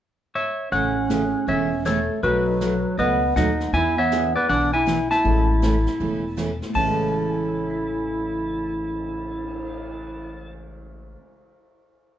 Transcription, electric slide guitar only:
0.35 0.70 C#5 medium
0.35 0.72 E5 medium
0.72 1.44 C#5 medium
0.72 1.50 F#5 medium
1.48 1.83 C#5 medium
1.48 1.83 E5 medium
1.86 2.21 A4 medium
1.86 2.21 C#5 medium
2.23 2.95 F#4 medium
2.23 2.98 B4 medium
2.99 3.34 B4 medium
2.99 3.36 D#5 medium
3.36 3.72 D#5 medium
3.36 3.74 F#5 medium
3.74 3.97 E5 medium
3.74 3.99 G#5 loud
3.98 4.34 C#5 medium
3.98 4.33 E5 medium
4.36 4.49 B4 medium
4.36 4.49 D5 medium
4.49 4.72 D5 medium
4.49 4.72 F#5 loud
4.73 5.09 E5 medium
4.73 5.09 G#5 medium
5.11 6.58 E5 medium
5.11 6.58 A5 medium
6.75 10.53 A5 medium

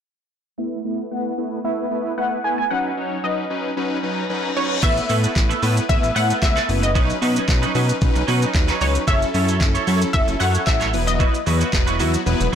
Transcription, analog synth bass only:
4.83 5.00 A1 loud
5.10 5.27 A2 medium
5.36 5.53 A1 loud
5.63 5.80 A2 loud
5.90 5.99 A1 loud
6.03 6.11 A1 medium
6.16 6.33 A2 loud
6.42 6.60 C#2 loud
6.69 6.97 F#1 medium
6.96 7.13 B1 loud
7.22 7.39 B2 medium
7.48 7.66 B1 loud
7.75 7.92 B2 loud
8.02 8.11 B1 loud
8.16 8.24 B1 loud
8.28 8.45 B2 loud
8.55 8.72 D#2 medium
8.81 8.98 C#2 medium
9.08 9.25 F#1 loud
9.34 9.62 F#2 loud
9.61 9.78 F#1 loud
9.87 10.05 F#2 medium
10.14 10.23 F#1 loud
10.28 10.36 F#1 loud
10.41 10.58 F#2 medium
10.67 10.95 A1 loud
10.94 11.28 E1 medium
11.47 11.64 E2 loud
11.73 12.01 E1 loud
12.00 12.17 E2 loud
12.26 12.35 E1 loud
12.40 12.48 E1 loud

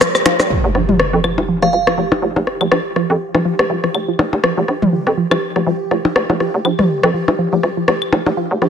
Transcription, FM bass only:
0.64 0.71 F1 medium
0.75 0.83 A#1 medium
1.13 1.20 F2 medium
1.38 1.44 D#1 medium
1.62 1.69 F1 medium
1.73 1.82 D#1 medium
1.98 2.14 F1 medium
2.22 2.31 F1 medium
2.36 2.43 F1 medium
2.61 2.67 F1 medium
2.71 2.80 A#1 medium
3.10 3.16 F2 loud
3.35 3.41 D#1 medium
3.59 3.66 F1 medium
3.70 3.78 D#1 medium
3.94 4.11 F1 medium
4.19 4.27 F1 loud
4.33 4.39 F1 loud
4.58 4.64 F1 loud
4.68 4.77 A#1 medium
5.07 5.13 F2 medium
5.31 5.38 D#1 medium
5.56 5.62 F1 medium
5.67 5.75 D#1 medium
5.91 6.07 F1 medium
6.16 6.24 F1 medium
6.30 6.36 F1 medium
6.54 6.61 F1 medium
6.65 6.73 A#1 medium
7.04 7.10 F2 loud
7.28 7.35 D#1 medium
7.53 7.59 F1 medium
7.63 7.72 D#1 medium
7.88 8.04 F1 medium
8.13 8.21 F1 medium
8.26 8.33 F1 loud
8.51 8.57 F1 loud
8.62 8.69 A#1 medium

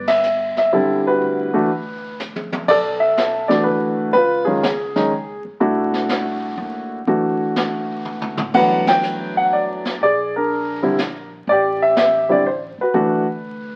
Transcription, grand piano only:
0.00 0.21 B4 medium
0.08 0.57 E5 loud
0.58 0.74 E5 medium
0.72 1.48 D3 medium
0.72 1.48 G3 medium
0.72 1.48 C4 medium
0.72 1.48 E4 medium
0.72 1.04 A4 medium
1.07 1.53 F#4 medium
1.07 2.16 B4 medium
1.54 1.68 E3 medium
1.54 1.68 A3 medium
1.54 1.69 D4 medium
1.54 1.68 F#4 medium
2.68 3.47 A4 medium
2.68 2.76 D5 loud
3.00 3.46 E5 medium
3.48 4.11 E3 medium
3.48 4.11 A3 medium
3.48 4.11 D4 medium
3.48 4.11 F#4 medium
3.48 3.64 D5 medium
3.64 4.10 B4 medium
4.13 4.44 B4 loud
4.17 4.45 F4 medium
4.45 4.61 D#3 medium
4.45 4.61 G#3 medium
4.45 4.61 C#4 medium
4.45 4.61 F4 medium
4.45 5.40 G#4 medium
4.95 5.10 D#3 medium
4.95 5.10 G#3 medium
4.95 5.10 C#4 medium
4.95 5.10 D#4 medium
5.60 6.98 A3 medium
5.60 6.98 D4 medium
5.60 6.98 E4 medium
5.60 6.98 F#4 medium
7.07 8.45 E3 medium
7.07 8.45 A3 medium
7.07 8.45 D4 medium
7.07 8.45 F#4 medium
8.54 9.91 E3 medium
8.54 9.92 F#3 medium
8.54 9.91 A3 medium
8.54 9.91 D4 medium
8.54 9.33 B4 medium
8.54 8.85 F#5 loud
8.89 9.33 G5 loud
9.37 9.53 F#5 medium
9.53 10.01 D5 medium
10.03 10.80 G#4 medium
10.03 10.33 D5 loud
10.36 11.29 D4 medium
10.36 11.29 A#4 medium
10.82 10.97 D3 medium
10.82 10.97 G3 medium
10.82 10.97 C4 medium
10.82 10.97 E4 medium
11.49 12.27 G4 medium
11.49 11.79 D5 loud
11.82 11.96 E5 loud
11.98 12.31 E5 loud
12.29 12.43 D3 medium
12.29 12.43 G3 medium
12.29 12.44 C4 medium
12.29 12.44 E4 medium
12.29 12.45 D5 medium
12.46 12.54 C5 medium
12.81 12.93 F#4 medium
12.81 13.76 B4 medium
12.94 13.24 E3 medium
12.94 13.24 A3 medium
12.94 13.24 D4 medium
12.94 13.24 F#4 medium

